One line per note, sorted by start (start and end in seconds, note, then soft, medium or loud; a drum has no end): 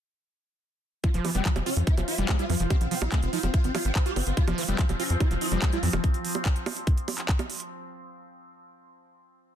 1.04 1.09 F3 medium
1.04 6.04 F4 medium
1.04 1.10 F4 loud
1.04 kick loud
1.04 closed hi-hat medium
1.14 1.20 F1 medium
1.14 1.21 F3 medium
1.14 1.26 F3 medium
1.14 closed hi-hat medium
1.25 1.30 E3 loud
1.25 1.31 F3 medium
1.25 open hi-hat loud
1.25 high bongo soft
1.30 6.04 C5 medium
1.35 1.41 F1 medium
1.35 1.44 G3 loud
1.35 1.42 C4 medium
1.35 closed hi-hat medium
1.45 1.52 F3 medium
1.45 1.51 F3 loud
1.45 kick loud
1.45 clap loud
1.45 closed hi-hat medium
1.53 1.62 F1 medium
1.53 1.62 F3 medium
1.53 1.59 F3 medium
1.53 6.04 F5 medium
1.53 closed hi-hat medium
1.53 high bongo medium
1.66 1.73 C#4 loud
1.66 1.70 F4 loud
1.66 open hi-hat medium
1.77 1.83 F2 medium
1.77 1.83 F3 medium
1.77 closed hi-hat medium
1.87 1.94 E4 medium
1.87 kick loud
1.87 closed hi-hat medium
1.97 2.04 F1 medium
1.97 2.04 F3 medium
1.97 2.01 F3 medium
1.97 closed hi-hat medium
1.97 high bongo soft
2.08 2.15 E4 medium
2.08 open hi-hat loud
2.18 2.25 F1 medium
2.18 2.25 F3 medium
2.18 2.27 G3 loud
2.18 closed hi-hat medium
2.29 2.35 F3 medium
2.29 2.37 G#3 medium
2.29 kick loud
2.29 clap loud
2.29 closed hi-hat medium
2.29 high bongo medium
2.39 2.45 G3 medium
2.39 2.46 F4 loud
2.39 closed hi-hat medium
2.50 2.56 F2 loud
2.50 2.56 F3 medium
2.50 2.55 F3 medium
2.50 open hi-hat medium
2.60 2.66 F1 medium
2.60 2.67 F3 medium
2.60 2.63 F3 loud
2.60 closed hi-hat medium
2.70 2.76 C4 medium
2.70 2.77 G4 loud
2.70 kick loud
2.70 closed hi-hat medium
2.70 high bongo soft
2.81 2.87 A#1 medium
2.81 2.87 C4 medium
2.81 closed hi-hat medium
2.91 2.95 F3 loud
2.91 2.98 C4 medium
2.91 open hi-hat loud
3.02 3.08 A#1 medium
3.02 3.08 E4 medium
3.02 high bongo medium
3.12 3.21 G#3 medium
3.12 3.19 C4 medium
3.12 kick loud
3.12 clap loud
3.12 closed hi-hat medium
3.22 3.29 F1 medium
3.22 3.29 C4 medium
3.22 closed hi-hat medium
3.33 3.39 F3 medium
3.33 3.40 E4 loud
3.33 open hi-hat loud
3.43 3.50 F1 medium
3.43 3.47 F3 loud
3.43 3.50 C4 medium
3.43 closed hi-hat medium
3.43 high bongo soft
3.54 3.60 F4 medium
3.54 kick loud
3.54 closed hi-hat medium
3.64 3.70 G#1 medium
3.64 3.71 C4 medium
3.64 closed hi-hat medium
3.75 3.78 F3 loud
3.75 3.81 F4 loud
3.75 open hi-hat loud
3.75 high bongo medium
3.85 3.91 G#1 medium
3.85 3.92 C4 medium
3.85 closed hi-hat medium
3.95 4.02 C4 medium
3.95 kick loud
3.95 clap loud
3.95 closed hi-hat medium
4.06 4.12 F4 medium
4.06 4.12 G4 loud
4.06 closed hi-hat medium
4.16 4.23 G1 loud
4.16 4.23 C4 medium
4.16 open hi-hat loud
4.16 high bongo soft
4.27 4.33 G1 medium
4.27 4.33 C4 medium
4.27 closed hi-hat medium
4.37 4.43 F3 medium
4.37 6.08 F3 medium
4.37 6.08 C4 medium
4.37 4.44 F4 loud
4.37 kick loud
4.37 closed hi-hat medium
4.47 4.54 F1 medium
4.47 4.59 F3 medium
4.47 4.54 F3 medium
4.47 closed hi-hat medium
4.47 high bongo medium
4.58 4.64 E3 loud
4.58 4.65 F3 medium
4.58 open hi-hat loud
4.68 4.75 F1 medium
4.68 4.77 G3 loud
4.68 4.75 C4 medium
4.68 closed hi-hat medium
4.79 4.84 F3 loud
4.79 4.85 F3 medium
4.79 kick loud
4.79 clap loud
4.79 closed hi-hat medium
4.89 4.95 F1 medium
4.89 4.93 F3 medium
4.89 4.96 F3 medium
4.89 closed hi-hat medium
4.89 high bongo soft
5.00 5.06 C#4 medium
5.00 5.03 F4 loud
5.00 open hi-hat loud
5.10 5.16 F2 medium
5.10 5.17 F3 medium
5.10 closed hi-hat medium
5.20 5.27 E4 medium
5.20 kick loud
5.20 closed hi-hat medium
5.20 high bongo medium
5.31 5.37 F1 medium
5.31 5.34 F3 medium
5.31 5.38 F3 medium
5.31 closed hi-hat medium
5.41 5.48 E4 medium
5.41 open hi-hat loud
5.52 5.58 F1 medium
5.52 5.58 F3 medium
5.52 5.60 G3 loud
5.52 closed hi-hat medium
5.62 5.69 F3 medium
5.62 kick loud
5.62 clap loud
5.62 closed hi-hat medium
5.62 high bongo soft
5.73 5.78 G3 medium
5.73 5.79 F4 loud
5.73 closed hi-hat medium
5.83 5.89 F2 medium
5.83 5.89 F3 medium
5.83 5.90 F3 medium
5.83 open hi-hat loud
5.93 6.00 F1 medium
5.93 6.00 F3 medium
5.93 5.97 F3 loud
5.93 closed hi-hat medium
5.93 high bongo medium
6.04 kick loud
6.04 closed hi-hat medium
6.14 closed hi-hat medium
6.25 open hi-hat loud
6.35 closed hi-hat medium
6.35 high bongo soft
6.45 kick loud
6.45 clap loud
6.45 closed hi-hat medium
6.56 closed hi-hat medium
6.66 open hi-hat loud
6.66 high bongo medium
6.77 closed hi-hat medium
6.87 kick loud
6.87 closed hi-hat medium
6.98 closed hi-hat medium
7.08 open hi-hat loud
7.08 high bongo soft
7.18 clap soft
7.18 closed hi-hat medium
7.29 kick loud
7.29 clap loud
7.29 closed hi-hat medium
7.39 closed hi-hat medium
7.39 high bongo medium
7.50 open hi-hat medium
7.60 closed hi-hat medium